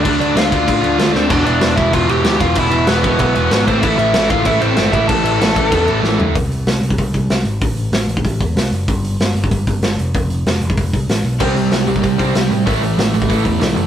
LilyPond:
<<
  \new Staff \with { instrumentName = "Lead electric guitar" } { \time 4/4 \key a \minor \tempo 4 = 190 <d' d''>4 <f' f''>2~ <f' f''>8 <c' c''>8 | <d' d''>8 <d' d''>4 <e' e''>8 <f' f''>8 <g' g''>4 <f' f''>8 | <e' e''>4 <b b'>2~ <b b'>8 <c' c''>8 | <e' e''>8 <e' e''>4 <f' f''>8 <e' e''>8 <c' c''>4 <e' e''>8 |
<a' a''>2. r4 | r1 | r1 | r1 |
r1 | r1 | r1 | }
  \new Staff \with { instrumentName = "Distorted electric guitar" } { \clef bass \time 4/4 \key a \minor <d a d'>4. <d a d'>2~ <d a d'>8 | <e, b, e>4. <e, b, e>2~ <e, b, e>8 | <e, b, e>4. <e, b, e>2 <a, e a>8~ | <a, e a>4 <a, e a>2~ <a, e a>8 <a, e a>8~ |
<a, e a>4 <a, e a>2~ <a, e a>8 r8 | r1 | r1 | r1 |
r1 | <c g c'>1 | <a, e a>1 | }
  \new Staff \with { instrumentName = "Overdriven electric guitar" } { \clef bass \time 4/4 \key a \minor <d a d'>8 <d a d'>8 <d a d'>8 <d a d'>8 <d a d'>8 <d a d'>8 <d a d'>8 <d a d'>8 | <e, b, e>8 <e, b, e>8 <e, b, e>8 <e, b, e>8 <e, b, e>8 <e, b, e>8 <e, b, e>8 <e, b, e>8 | <e, b, e>8 <e, b, e>8 <e, b, e>8 <e, b, e>8 <e, b, e>8 <e, b, e>8 <e, b, e>8 <a, e a>8 | <a, e a>8 <a, e a>8 <a, e a>8 <a, e a>8 <a, e a>8 <a, e a>8 <a, e a>8 <a, e a>8 |
<a, e a>8 <a, e a>8 <a, e a>8 <a, e a>8 <a, e a>8 <a, e a>8 <a, e a>8 <a, e a>8 | r1 | r1 | r1 |
r1 | <c g c'>8 <c g>8 <c g>8 <c g>8 <c g>8 <c g c'>8 <c g>8 <c g>8 | <a, e a>8 <a, e>8 <a, e>8 <a, e>8 <a, e a>8 <a, e>8 <a, e>8 <a, e>8 | }
  \new Staff \with { instrumentName = "Overdriven electric guitar" } { \clef bass \time 4/4 \key a \minor <d a d'>8 <d a d'>8 <d a d'>8 <d a d'>8 <d a d'>8 <d a d'>8 <d a d'>8 <d a d'>8 | <e, b, e>8 <e, b, e>8 <e, b, e>8 <e, b, e>8 <e, b, e>8 <e, b, e>8 <e, b, e>8 <e, b, e>8 | <e, b, e>8 <e, b, e>8 <e, b, e>8 <e, b, e>8 <e, b, e>8 <e, b, e>8 <e, b, e>8 <a, e a>8 | <a, e a>8 <a, e a>8 <a, e a>8 <a, e a>8 <a, e a>8 <a, e a>8 <a, e a>8 <a, e a>8 |
<a, e a>8 <a, e a>8 <a, e a>8 <a, e a>8 <a, e a>8 <a, e a>8 <a, e a>8 <a, e a>8 | r1 | r1 | r1 |
r1 | <c g c'>8 <c g>8 <c g>8 <c g>8 <c g>8 <c g c'>8 <c g>8 <c g>8 | <a, e a>8 <a, e>8 <a, e>8 <a, e>8 <a, e a>8 <a, e>8 <a, e>8 <a, e>8 | }
  \new Staff \with { instrumentName = "Picked electric bass" } { \clef bass \time 4/4 \key a \minor d,8 d,8 d,8 d,8 a,8 d,8 d,8 d,8 | e,,8 e,,8 e,,8 e,,8 e,,8 e,,8 d,8 e,,8 | e,,8 e,,8 e,,8 e,,8 b,,8 e,,8 gis,,8 a,,8 | a,,8 a,,8 a,,8 a,,8 a,,8 a,,8 g,,8 a,,8 |
a,,8 a,,8 a,,8 a,,8 e,8 a,,8 a,,8 d,8 | bis,,4 bis,,8 bis,,8 bis,,8 bis,,8 bis,,8 gis,,8 | a,,4 a,,8 a,,8 a,,8 e,8 c,8 fis,,8 | g,,4 g,,8 g,,8 g,,8 g,,8 g,,8 f,,8 |
f,,4 f,,8 f,,8 f,,8 c,8 a,,8 b,,8 | c,4 c,8 c,8 c,8 c,8 c,8 a,8 | a,,4 a,,8 a,,8 a,,8 e,8 c,8 fis,,8 | }
  \new DrumStaff \with { instrumentName = "Drums" } \drummode { \time 4/4 <cymc bd>8 cymc8 <cymc sn>8 <cymc bd>8 <cymc bd>8 cymc8 <cymc sn>8 sn8 | <cymc bd>8 cymc8 <cymc sn>8 <cymc bd>8 <cymc bd>8 cymc8 <cymc sn>8 <cymc bd>8 | <cymc bd>8 cymc8 <cymc sn>8 <cymc bd>8 <cymc bd>8 cymc8 <cymc sn>8 <cymc bd>8 | <cymc bd>8 cymc8 <cymc sn>8 <cymc bd>8 <cymc bd>8 cymc8 <cymc sn>8 <cymc bd>8 |
<cymc bd>8 cymc8 <cymc sn>8 <cymc bd>8 <cymc bd>8 cymc8 sn8 tomfh8 | <hho bd>8 hho8 <hho sn>8 hho16 bd16 <hho bd>8 <hho bd>8 <hho sn>8 hho8 | <hho bd>8 hho8 <hho sn>8 hho16 bd16 <hho bd>8 <hho bd>8 <hho sn>8 hho8 | <hho bd>8 hho8 <hho sn>8 hho16 bd16 <hho bd>8 <hho bd>8 <hho sn>8 hho8 |
<hho bd>8 hho8 <hho sn>8 hho16 bd16 <hho bd>8 <hho bd>8 <hho sn>8 hho8 | <cymc bd>8 hho8 <hho sn>8 hho16 bd16 <hho bd>8 <hho bd>8 <hho sn>8 hho8 | <hho bd>8 hho8 <hho sn>8 hho16 bd16 <hho bd>8 <hho bd>8 <hho sn>8 hho8 | }
>>